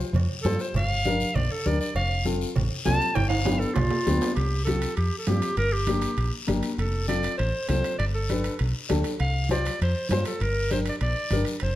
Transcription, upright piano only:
0, 0, Header, 1, 2, 480
1, 0, Start_track
1, 0, Tempo, 301811
1, 1194, Time_signature, 4, 2, 24, 8
1, 18694, End_track
2, 0, Start_track
2, 0, Title_t, "Upright piano"
2, 0, Program_c, 0, 0
2, 712, Note_on_c, 0, 65, 67
2, 718, Note_on_c, 0, 67, 64
2, 729, Note_on_c, 0, 72, 77
2, 1049, Note_off_c, 0, 65, 0
2, 1052, Note_off_c, 0, 67, 0
2, 1058, Note_off_c, 0, 72, 0
2, 1677, Note_on_c, 0, 62, 74
2, 1687, Note_on_c, 0, 67, 67
2, 1697, Note_on_c, 0, 70, 84
2, 2011, Note_off_c, 0, 62, 0
2, 2016, Note_off_c, 0, 67, 0
2, 2022, Note_off_c, 0, 70, 0
2, 2643, Note_on_c, 0, 62, 70
2, 2648, Note_on_c, 0, 67, 66
2, 2654, Note_on_c, 0, 70, 84
2, 2973, Note_off_c, 0, 62, 0
2, 2976, Note_off_c, 0, 67, 0
2, 2979, Note_off_c, 0, 70, 0
2, 3580, Note_on_c, 0, 60, 69
2, 3587, Note_on_c, 0, 69, 81
2, 3590, Note_on_c, 0, 65, 70
2, 3921, Note_off_c, 0, 60, 0
2, 3925, Note_off_c, 0, 69, 0
2, 3926, Note_off_c, 0, 65, 0
2, 4536, Note_on_c, 0, 69, 78
2, 4537, Note_on_c, 0, 60, 73
2, 4542, Note_on_c, 0, 65, 71
2, 4879, Note_off_c, 0, 60, 0
2, 4879, Note_off_c, 0, 69, 0
2, 4882, Note_off_c, 0, 65, 0
2, 5485, Note_on_c, 0, 59, 73
2, 5496, Note_on_c, 0, 62, 72
2, 5505, Note_on_c, 0, 67, 82
2, 5832, Note_off_c, 0, 59, 0
2, 5838, Note_off_c, 0, 62, 0
2, 5842, Note_off_c, 0, 67, 0
2, 6464, Note_on_c, 0, 59, 73
2, 6468, Note_on_c, 0, 62, 60
2, 6469, Note_on_c, 0, 67, 83
2, 6802, Note_off_c, 0, 59, 0
2, 6804, Note_off_c, 0, 62, 0
2, 6804, Note_off_c, 0, 67, 0
2, 7422, Note_on_c, 0, 60, 61
2, 7431, Note_on_c, 0, 65, 56
2, 7438, Note_on_c, 0, 67, 74
2, 7761, Note_off_c, 0, 60, 0
2, 7765, Note_off_c, 0, 65, 0
2, 7769, Note_off_c, 0, 67, 0
2, 8392, Note_on_c, 0, 65, 57
2, 8397, Note_on_c, 0, 60, 62
2, 8404, Note_on_c, 0, 67, 69
2, 8726, Note_off_c, 0, 65, 0
2, 8728, Note_off_c, 0, 60, 0
2, 8732, Note_off_c, 0, 67, 0
2, 9348, Note_on_c, 0, 58, 63
2, 9353, Note_on_c, 0, 62, 64
2, 9360, Note_on_c, 0, 67, 78
2, 9684, Note_off_c, 0, 58, 0
2, 9687, Note_off_c, 0, 62, 0
2, 9690, Note_off_c, 0, 67, 0
2, 10294, Note_on_c, 0, 58, 73
2, 10312, Note_on_c, 0, 62, 74
2, 10320, Note_on_c, 0, 67, 85
2, 10637, Note_off_c, 0, 58, 0
2, 10646, Note_off_c, 0, 62, 0
2, 10651, Note_off_c, 0, 67, 0
2, 11257, Note_on_c, 0, 60, 68
2, 11266, Note_on_c, 0, 65, 65
2, 11270, Note_on_c, 0, 69, 73
2, 11600, Note_off_c, 0, 60, 0
2, 11604, Note_off_c, 0, 65, 0
2, 11606, Note_off_c, 0, 69, 0
2, 12218, Note_on_c, 0, 60, 68
2, 12228, Note_on_c, 0, 65, 57
2, 12232, Note_on_c, 0, 69, 71
2, 12560, Note_off_c, 0, 60, 0
2, 12565, Note_off_c, 0, 65, 0
2, 12567, Note_off_c, 0, 69, 0
2, 13196, Note_on_c, 0, 62, 68
2, 13210, Note_on_c, 0, 67, 65
2, 13213, Note_on_c, 0, 71, 73
2, 13530, Note_off_c, 0, 62, 0
2, 13537, Note_off_c, 0, 67, 0
2, 13538, Note_off_c, 0, 71, 0
2, 14142, Note_on_c, 0, 62, 76
2, 14154, Note_on_c, 0, 67, 71
2, 14163, Note_on_c, 0, 69, 91
2, 14483, Note_off_c, 0, 62, 0
2, 14489, Note_off_c, 0, 67, 0
2, 14493, Note_off_c, 0, 69, 0
2, 15113, Note_on_c, 0, 65, 66
2, 15120, Note_on_c, 0, 67, 60
2, 15123, Note_on_c, 0, 72, 73
2, 15449, Note_off_c, 0, 65, 0
2, 15452, Note_off_c, 0, 67, 0
2, 15454, Note_off_c, 0, 72, 0
2, 16084, Note_on_c, 0, 65, 65
2, 16091, Note_on_c, 0, 67, 58
2, 16098, Note_on_c, 0, 72, 69
2, 16414, Note_off_c, 0, 65, 0
2, 16418, Note_off_c, 0, 67, 0
2, 16421, Note_off_c, 0, 72, 0
2, 17026, Note_on_c, 0, 62, 69
2, 17030, Note_on_c, 0, 67, 63
2, 17044, Note_on_c, 0, 70, 72
2, 17365, Note_off_c, 0, 62, 0
2, 17367, Note_off_c, 0, 67, 0
2, 17374, Note_off_c, 0, 70, 0
2, 18005, Note_on_c, 0, 67, 65
2, 18006, Note_on_c, 0, 62, 70
2, 18015, Note_on_c, 0, 70, 75
2, 18335, Note_off_c, 0, 62, 0
2, 18335, Note_off_c, 0, 67, 0
2, 18340, Note_off_c, 0, 70, 0
2, 18694, End_track
0, 0, End_of_file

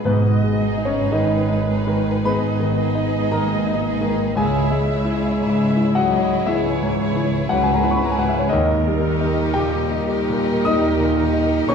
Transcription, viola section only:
0, 0, Header, 1, 2, 480
1, 0, Start_track
1, 0, Key_signature, 5, "minor"
1, 0, Tempo, 1090909
1, 22, Time_signature, 4, 2, 24, 8
1, 1463, Tempo, 1052632
1, 2903, Tempo, 1023891
1, 4343, Tempo, 1098901
1, 4823, Tempo, 1029160
1, 5334, End_track
2, 0, Start_track
2, 0, Title_t, "Viola section"
2, 0, Program_c, 0, 48
2, 23, Note_on_c, 0, 75, 55
2, 478, Note_off_c, 0, 75, 0
2, 497, Note_on_c, 0, 71, 52
2, 982, Note_off_c, 0, 71, 0
2, 993, Note_on_c, 0, 75, 57
2, 1940, Note_on_c, 0, 76, 59
2, 1941, Note_off_c, 0, 75, 0
2, 2411, Note_off_c, 0, 76, 0
2, 2421, Note_on_c, 0, 76, 59
2, 2658, Note_off_c, 0, 76, 0
2, 2662, Note_on_c, 0, 75, 51
2, 2901, Note_off_c, 0, 75, 0
2, 2904, Note_on_c, 0, 73, 58
2, 3380, Note_off_c, 0, 73, 0
2, 3383, Note_on_c, 0, 71, 53
2, 3848, Note_off_c, 0, 71, 0
2, 3857, Note_on_c, 0, 70, 55
2, 4342, Note_off_c, 0, 70, 0
2, 4347, Note_on_c, 0, 67, 57
2, 4583, Note_off_c, 0, 67, 0
2, 4584, Note_on_c, 0, 70, 59
2, 5305, Note_off_c, 0, 70, 0
2, 5305, Note_on_c, 0, 68, 55
2, 5334, Note_off_c, 0, 68, 0
2, 5334, End_track
0, 0, End_of_file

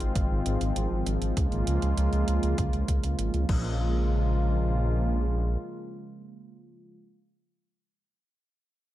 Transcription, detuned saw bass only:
0, 0, Header, 1, 2, 480
1, 0, Start_track
1, 0, Key_signature, -5, "minor"
1, 0, Tempo, 606061
1, 1083, Time_signature, 4, 2, 24, 8
1, 7080, End_track
2, 0, Start_track
2, 0, Title_t, "Detuned saw bass"
2, 0, Program_c, 0, 39
2, 5, Note_on_c, 0, 32, 81
2, 95, Note_off_c, 0, 32, 0
2, 124, Note_on_c, 0, 32, 104
2, 214, Note_off_c, 0, 32, 0
2, 245, Note_on_c, 0, 32, 75
2, 335, Note_off_c, 0, 32, 0
2, 365, Note_on_c, 0, 32, 89
2, 455, Note_off_c, 0, 32, 0
2, 484, Note_on_c, 0, 32, 76
2, 574, Note_off_c, 0, 32, 0
2, 605, Note_on_c, 0, 32, 97
2, 695, Note_off_c, 0, 32, 0
2, 726, Note_on_c, 0, 32, 75
2, 815, Note_off_c, 0, 32, 0
2, 845, Note_on_c, 0, 32, 96
2, 935, Note_off_c, 0, 32, 0
2, 965, Note_on_c, 0, 32, 77
2, 1055, Note_off_c, 0, 32, 0
2, 1085, Note_on_c, 0, 37, 103
2, 1174, Note_off_c, 0, 37, 0
2, 1205, Note_on_c, 0, 32, 79
2, 1295, Note_off_c, 0, 32, 0
2, 1325, Note_on_c, 0, 37, 91
2, 1414, Note_off_c, 0, 37, 0
2, 1446, Note_on_c, 0, 37, 79
2, 1535, Note_off_c, 0, 37, 0
2, 1565, Note_on_c, 0, 37, 106
2, 1655, Note_off_c, 0, 37, 0
2, 1685, Note_on_c, 0, 37, 75
2, 1775, Note_off_c, 0, 37, 0
2, 1806, Note_on_c, 0, 37, 90
2, 1895, Note_off_c, 0, 37, 0
2, 1927, Note_on_c, 0, 37, 85
2, 2015, Note_off_c, 0, 37, 0
2, 2045, Note_on_c, 0, 37, 102
2, 2134, Note_off_c, 0, 37, 0
2, 2166, Note_on_c, 0, 37, 74
2, 2255, Note_off_c, 0, 37, 0
2, 2284, Note_on_c, 0, 37, 92
2, 2374, Note_off_c, 0, 37, 0
2, 2407, Note_on_c, 0, 37, 79
2, 2496, Note_off_c, 0, 37, 0
2, 2527, Note_on_c, 0, 32, 94
2, 2616, Note_off_c, 0, 32, 0
2, 2646, Note_on_c, 0, 37, 81
2, 2735, Note_off_c, 0, 37, 0
2, 2764, Note_on_c, 0, 34, 97
2, 4412, Note_off_c, 0, 34, 0
2, 7080, End_track
0, 0, End_of_file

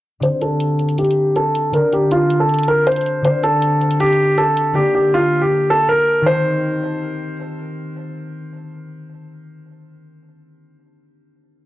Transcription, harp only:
0, 0, Header, 1, 2, 480
1, 0, Start_track
1, 0, Tempo, 377358
1, 287, Time_signature, 4, 2, 24, 8
1, 14830, End_track
2, 0, Start_track
2, 0, Title_t, "Harp"
2, 0, Program_c, 0, 46
2, 257, Note_on_c, 0, 50, 61
2, 289, Note_on_c, 0, 60, 56
2, 321, Note_on_c, 0, 67, 69
2, 2166, Note_off_c, 0, 50, 0
2, 2181, Note_on_c, 0, 50, 60
2, 2208, Note_off_c, 0, 60, 0
2, 2213, Note_on_c, 0, 60, 55
2, 2246, Note_on_c, 0, 70, 76
2, 3315, Note_off_c, 0, 67, 0
2, 4077, Note_off_c, 0, 50, 0
2, 4092, Note_on_c, 0, 50, 64
2, 4119, Note_off_c, 0, 60, 0
2, 4124, Note_on_c, 0, 60, 60
2, 4157, Note_on_c, 0, 67, 71
2, 4945, Note_off_c, 0, 70, 0
2, 5993, Note_off_c, 0, 50, 0
2, 6009, Note_on_c, 0, 50, 64
2, 6041, Note_on_c, 0, 58, 57
2, 6068, Note_off_c, 0, 67, 0
2, 6073, Note_on_c, 0, 67, 73
2, 7904, Note_on_c, 0, 51, 80
2, 7940, Note_off_c, 0, 60, 0
2, 7969, Note_on_c, 0, 60, 71
2, 8029, Note_off_c, 0, 67, 0
2, 8032, Note_off_c, 0, 50, 0
2, 8034, Note_on_c, 0, 67, 89
2, 10131, Note_off_c, 0, 58, 0
2, 13633, Note_off_c, 0, 51, 0
2, 13666, Note_off_c, 0, 60, 0
2, 13698, Note_off_c, 0, 67, 0
2, 14830, End_track
0, 0, End_of_file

